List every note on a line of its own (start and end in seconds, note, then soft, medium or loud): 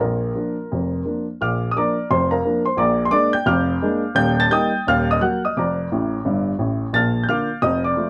0.00 0.31 A#1 medium
0.00 0.30 A#2 medium
0.00 1.24 F4 soft
0.00 1.08 A#4 medium
0.35 0.55 F3 soft
0.35 0.55 A#3 soft
0.35 0.55 D4 soft
0.72 1.01 F1 medium
0.72 1.01 F2 medium
1.05 1.24 F3 soft
1.05 1.25 A#3 soft
1.05 1.25 D4 soft
1.41 1.70 A#1 medium
1.41 1.70 A#2 medium
1.41 1.68 F5 medium
1.41 1.68 D6 medium
1.41 1.65 F6 medium
1.71 1.76 D#6 medium
1.76 1.95 F3 soft
1.76 1.95 A#3 soft
1.76 1.96 D4 soft
1.76 2.09 D5 medium
1.76 2.09 A#5 medium
1.76 2.05 D6 medium
2.11 2.40 F1 medium
2.11 2.40 F2 medium
2.11 2.32 C5 medium
2.11 2.29 C6 medium
2.31 2.64 A#4 medium
2.31 2.64 F5 medium
2.31 2.61 A#5 medium
2.45 2.64 F3 medium
2.45 2.64 A#3 soft
2.45 2.65 D4 soft
2.66 2.78 C5 medium
2.66 2.77 C6 medium
2.77 3.08 A#1 medium
2.77 3.07 A#2 medium
2.77 3.05 D5 medium
2.77 3.05 A#5 medium
2.77 3.02 D6 medium
3.05 3.13 C6 medium
3.10 3.30 G#3 soft
3.10 3.31 A#3 soft
3.10 3.31 D4 medium
3.10 3.33 D5 medium
3.10 3.31 D6 loud
3.33 3.47 G5 medium
3.33 3.45 G6 medium
3.46 3.76 F1 medium
3.46 3.77 F2 medium
3.46 4.13 F5 medium
3.46 4.13 D6 medium
3.46 4.06 F6 medium
3.82 4.01 G#3 medium
3.82 4.02 A#3 medium
3.82 4.02 D4 medium
4.15 4.45 D#1 medium
4.15 4.45 D#2 medium
4.15 4.37 G5 medium
4.15 4.35 G6 loud
4.40 4.52 A5 medium
4.40 4.50 A6 loud
4.51 4.70 G3 soft
4.51 4.70 A#3 soft
4.51 4.71 D#4 medium
4.51 4.85 G5 medium
4.51 4.85 D#6 medium
4.51 4.81 G6 loud
4.87 5.16 D#1 medium
4.87 5.17 D#2 medium
4.87 5.08 F5 medium
4.87 5.06 F6 loud
5.11 5.22 D#5 medium
5.11 5.21 D#6 medium
5.21 5.40 F#3 soft
5.21 5.41 A#3 soft
5.21 5.40 F#4 soft
5.21 5.42 F#5 medium
5.21 5.40 F#6 medium
5.45 5.56 D#5 medium
5.45 5.55 D#6 medium
5.57 5.86 F1 medium
5.57 5.86 F2 medium
5.57 6.57 D5 medium
5.57 6.57 A#5 medium
5.57 6.45 D6 medium
5.92 6.17 A1 medium
5.92 6.17 A2 medium
6.25 6.51 G1 medium
6.25 6.51 G2 medium
6.59 6.85 A1 medium
6.59 6.85 A2 medium
6.93 7.23 A#1 medium
6.93 7.23 A#2 medium
6.93 7.21 A5 medium
6.93 7.22 F6 medium
6.93 7.18 A6 loud
7.24 7.30 G6 medium
7.28 7.48 D3 soft
7.28 7.48 A#3 soft
7.28 7.48 F4 medium
7.28 7.62 F5 medium
7.28 7.62 D6 medium
7.28 7.58 F6 medium
7.62 7.92 F1 medium
7.62 7.93 F2 medium
7.62 7.84 D#5 medium
7.62 7.82 D#6 medium
7.84 8.10 D5 medium
7.84 8.10 D6 medium
7.96 8.10 F3 soft
7.96 8.10 A3 medium
7.96 8.10 F4 medium